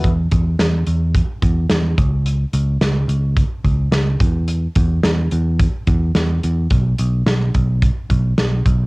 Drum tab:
HH |xxxxxxxx|xxxxxxxx|xxxxxxxx|xxxxxxxx|
SD |--o---o-|--o---o-|--o---o-|--o---o-|
BD |oo--oo-o|----oo-o|-o--oo--|o--ooo-o|